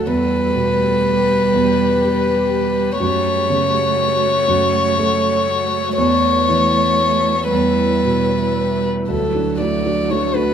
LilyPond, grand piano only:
\new Staff \with { instrumentName = "Grand piano" } { \time 3/4 \key e \dorian \tempo 4 = 121 e,4 b,2 | e,4 g2 | fis,4 cis2 | fis,4 a2 |
e,4 e2 | e,4 b,2 | d,8 <d' fis'>8 <a d' fis'>8 <d' fis'>8 <a d' fis'>8 <d' fis'>8 | }